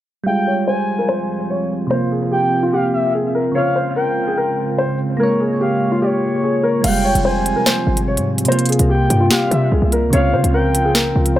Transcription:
0.24 F3 G3 G#3 C4 F4 F5 G5
0.30 F4
0.47 C#5
0.67 C5 G#5
0.98 A#4
1.09 C5
1.50 C#5
1.87 C3 A#3 C5
1.91 A#3 F4
2.11 G#4
2.32 G4 G5
2.63 F4
2.73 G4 F5
2.94 E5
3.14 G#4
3.35 A#4
3.52 C#3 G#3 C4 F4 C#5 F5
3.58 F4
3.76 C5
3.96 A#4 G5
4.27 G#4
4.37 A#4
4.78 C5
5.17 G#3 A#3 F4 A#4
5.23 C#5
5.40 G#4
5.61 G4 F5
5.92 F4
6.02 G4 C#5
6.43 G#4
6.63 A#4
6.82 F1 C3 F3 G#3 C4 F4 F5 G5, closed hi-hat, crash
6.88 G3
7.05 C#5
7.15 F1, closed hi-hat
7.25 C5 G#5
7.46 closed hi-hat
7.56 A#4
7.66 C5, snare, closed hi-hat
7.87 G#1
7.97 closed hi-hat
8.08 C#5
8.17 G#2, closed hi-hat
8.38 closed hi-hat
8.45 C3 G3 A#3 F4 C5, closed hi-hat
8.52 F4, closed hi-hat
8.59 closed hi-hat
8.66 closed hi-hat
8.69 G#4, closed hi-hat
8.72 closed hi-hat
8.79 C2, closed hi-hat
8.89 G4 G5
9.10 G2, closed hi-hat
9.21 F4
9.31 G4 F5, snare, closed hi-hat
9.51 C3 E5, closed hi-hat
9.72 C2 G#4
9.82 C2
9.92 A#4, closed hi-hat
10.03 C#2
10.11 C#2 C#3 F3 C4 F4 C#5 F5, closed hi-hat
10.17 F4
10.33 C#3 C5
10.44 C#2, closed hi-hat
10.54 A#4 G5
10.75 closed hi-hat
10.85 G#4
10.95 A#4, snare, closed hi-hat
11.16 C#2
11.26 closed hi-hat
11.36 C5

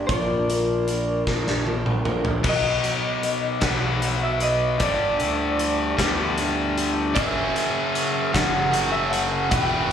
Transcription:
0.07 A#1 A#2 F3 A#3 D5, kick, closed hi-hat
0.12 D4 F4 A#4
0.48 A#3 D4 F4 A#4, closed hi-hat
0.87 A#3 D4 F4 A#4, closed hi-hat
1.27 A#1 A#3 D4 F4 A#4, kick, snare
1.47 snare
1.66 A#3 D4 F4 A#4, high tom
1.86 mid tom
2.05 A#1 A#3 D4 F4 A#4, mid tom
2.25 floor tom
2.43 B1 B2 F#3 B3, kick, crash
2.49 D#5
2.83 F#3, closed hi-hat
3.23 B3, closed hi-hat
3.60 B1 B2 F#3 B3 D#4 F#5, kick, snare, closed hi-hat
4.02 F#4, closed hi-hat
4.23 E5
4.40 B4 D#5, closed hi-hat
4.78 G1 G2 D3 G3 D5, kick, closed hi-hat
5.19 D2 D3, closed hi-hat
5.59 G3, closed hi-hat
5.97 D2 G2 D3 G3 B3, kick, snare, closed hi-hat
6.38 D4, closed hi-hat
6.78 G4, closed hi-hat
7.14 F#1 F#2 C#3 F#3 A#3 C#4 F#4 E5, kick, closed hi-hat
7.56 closed hi-hat
7.95 closed hi-hat
8.32 F#1 F#2 C#3 F#3 F#5, kick, snare, closed hi-hat
8.71 F#2 C#3 F#3 A#3 C#4 F#4, closed hi-hat
8.92 E5
9.11 F#5, closed hi-hat
9.49 E1 E2 B2 E3 G3 B3 E4 G5, kick, closed hi-hat

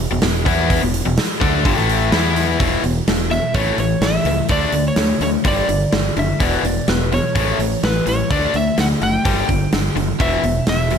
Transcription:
0.11 E1 E2 B2
0.22 E1 E2 B2, snare, open hi-hat
0.45 E2 E3 B3 E4, kick, open hi-hat
0.70 kick, open hi-hat
0.82 E1 E2 B2
0.94 open hi-hat
1.05 E1 E2 B2
1.18 snare, open hi-hat
1.40 D2 D3 A3 D4, kick, open hi-hat
1.64 G1 G2 D3, kick, open hi-hat
1.76 A1 A2 E3 A3
1.89 open hi-hat
2.12 E2 E3 B3 E4, snare, open hi-hat
2.36 open hi-hat
2.59 E1 E2 B2 E3, kick, open hi-hat
2.84 E1 E2 B2, open hi-hat
3.07 E1 E2 B2, snare, open hi-hat
3.30 E2 B2 E5, open hi-hat
3.54 A1 A2 E3 A3 C#5, kick, open hi-hat
3.78 A1 A2 E3 C#5, open hi-hat
4.01 A1 A2 E3 E5, snare, open hi-hat
4.25 C#2 A2 E3, open hi-hat
4.49 D2 D3 A3 D4 D5, kick, open hi-hat
4.72 D2 D3 A3, open hi-hat
4.88 C#5
4.96 D2 D3 A3, snare, open hi-hat
5.20 D2 D3 A3 C#5, open hi-hat
5.44 G1 G2 D3 G3 D5, kick, open hi-hat
5.69 G1 G2 D3, open hi-hat
5.93 G1 G2 D3, snare, open hi-hat
6.16 F#1 G2 D3 E5, open hi-hat
6.40 E1 E2 B2 E3 D5, kick, open hi-hat
6.55 B4
6.63 E1 E2 B2 D5, open hi-hat
6.88 E1 E2 B2 B4, snare, open hi-hat
7.12 E2 B2 C#5, open hi-hat
7.35 A1 A2 E3 A3, kick, open hi-hat
7.59 A1 A2 E3, open hi-hat
7.83 A1 A2 E3 B4, snare, open hi-hat
8.06 A1 A2 E3 C#5, open hi-hat
8.31 D2 D3 A3 D4 D5, kick, open hi-hat
8.54 D2 D3 A3 E5, open hi-hat
8.78 D2 D3 A3 F#5, snare, open hi-hat
9.01 F#1 D3 A3 G5, open hi-hat
9.25 G1 G2 D3 G3, kick, open hi-hat
9.49 G1 G2 D3, kick, open hi-hat
9.72 G1 G2 D3, snare, open hi-hat
9.96 F#1 G2 D3, open hi-hat
10.20 E1 E2 B2 E3 E5, kick, open hi-hat
10.43 E1 E2 B2, open hi-hat
10.67 E1 E2 B2 E5, snare, open hi-hat
10.91 E2 B2, open hi-hat

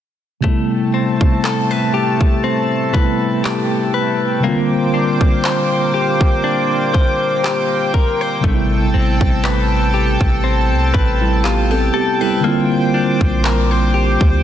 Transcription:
0.41 C3 G3 A3 A4 G5 A5, kick
0.46 B3 E4
0.94 C4
1.21 kick
1.44 A4, clap
1.71 B4
1.94 G4
2.21 kick
2.44 C4
2.92 C3 G3 A3 B3 E4 B4, kick
3.44 G4, clap
3.94 B4
4.40 C3 G3 A#3 C5 D6
4.46 D3 C4 F4
4.94 D4
5.21 kick
5.44 C5, clap
5.94 G4
6.21 kick
6.44 D4
6.94 C5, kick
7.44 G4, clap
7.94 A#4, kick
8.21 C5
8.40 A1 C3 G3 A3 A4 A5, kick
8.46 B3 D4
8.55 E4
8.94 A1 C4
9.21 A1, kick
9.44 B4, clap
9.94 G4
10.21 A1, kick
10.44 C4
10.71 C2
10.94 A1 B4, kick
11.21 G3 E4
11.44 B3 F4 G4, clap
11.71 C4 G4 A4
11.94 B3 G4 A4
12.21 G3 E4 B4
12.40 D3 G3 A#3 C5 D6
12.46 C4 F4
12.94 D4
13.21 A#1, kick
13.44 A#4, clap
13.71 C5
13.94 G4
14.21 D2, kick

